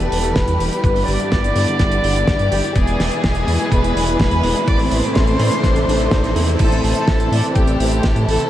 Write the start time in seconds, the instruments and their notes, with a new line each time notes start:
Already playing: string section E3 G3 B3 G4 B4, analog polysynth G3 B3 E4 D5, violin section A4 A5, riser
0.00 closed hi-hat
0.12 analog synth bass E1, open hi-hat
0.24 closed hi-hat
0.35 analog synth bass E1, violin section B4 B5, kick, snare, closed hi-hat
0.48 analog synth bass E2, closed hi-hat
0.60 analog synth bass E1, open hi-hat
0.73 closed hi-hat
0.83 analog synth bass G1, analog polysynth G2 G3 D4 E4 B4, string section D3 B3 E4, violin section B4 B5, kick, closed hi-hat
0.96 open hi-hat
1.07 analog synth bass G1, violin section D5 D6, open hi-hat
1.20 closed hi-hat
1.32 analog synth bass G1, kick, snare, closed hi-hat
1.44 closed hi-hat
1.56 analog polysynth G2 G3 D4 E4 D5, analog synth bass G2, open hi-hat
1.67 closed hi-hat
1.79 analog synth bass G1, kick, snare, closed hi-hat
1.92 closed hi-hat
2.04 analog synth bass G1, open hi-hat
2.16 closed hi-hat
2.28 analog synth bass G1, kick, snare, closed hi-hat
2.39 analog synth bass G2, closed hi-hat
2.51 analog synth bass G1, violin section G4 G5, open hi-hat
2.64 closed hi-hat
2.75 analog synth bass E1, string section B2 E3 G#3 G#4, analog polysynth G#3 B3 E4 B4, violin section G#4 G#5, kick, closed hi-hat
2.87 closed hi-hat
3.00 analog synth bass E1, snare, open hi-hat
3.12 closed hi-hat
3.23 analog synth bass E1, violin section G#4 G#5, kick, snare, closed hi-hat
3.35 closed hi-hat
3.48 analog synth bass E2, analog polysynth G#3 B3 E4 D5, open hi-hat
3.60 closed hi-hat
3.72 analog synth bass E1, violin section B4 B5, kick, closed hi-hat
3.84 closed hi-hat
3.96 analog synth bass E1, open hi-hat
4.08 closed hi-hat
4.20 analog synth bass E1, violin section B4 B5, kick, snare, closed hi-hat
4.31 analog synth bass E2, closed hi-hat
4.43 analog synth bass E1, open hi-hat
4.56 closed hi-hat
4.68 analog synth bass A1, analog polysynth A2 A3 C4 E4 C5, string section C3 E3 A3 A4, violin section D5 D6, kick, closed hi-hat
4.79 open hi-hat
4.91 analog synth bass A1, violin section C5 C6, open hi-hat
5.04 closed hi-hat
5.15 analog synth bass A1, kick, snare, closed hi-hat
5.27 closed hi-hat
5.39 analog polysynth A2 A3 C4 E4 D5, analog synth bass A2, open hi-hat
5.51 closed hi-hat
5.63 analog synth bass A1, kick, snare, closed hi-hat
5.76 closed hi-hat
5.88 analog synth bass A1, analog polysynth A2 A3 C4 E4 C5, open hi-hat
6.00 closed hi-hat
6.11 analog synth bass A1, kick, snare, closed hi-hat
6.24 analog synth bass A1, closed hi-hat
6.36 analog synth bass E2, open hi-hat
6.48 closed hi-hat
6.59 analog synth bass A1, analog polysynth A2 A3 C4 E4 C5, string section C3 E3 A3 E4 A4, violin section A4 A5, kick, closed hi-hat, crash
6.72 closed hi-hat
6.84 analog synth bass A1, violin section A4 A5, open hi-hat
6.95 closed hi-hat
7.08 analog synth bass A1, kick, snare, closed hi-hat
7.20 closed hi-hat
7.32 analog polysynth A2 A3 C4 E4 D5, analog synth bass A2, open hi-hat
7.44 closed hi-hat
7.55 analog synth bass A1, violin section G4 G5, kick, closed hi-hat
7.67 closed hi-hat
7.80 analog synth bass A1, analog polysynth A2 A3 C4 E4 C5, open hi-hat
7.92 closed hi-hat
8.03 analog synth bass A1, kick, snare, closed hi-hat
8.16 analog synth bass A2, closed hi-hat
8.28 analog synth bass A1, violin section A4 A5, open hi-hat
8.40 closed hi-hat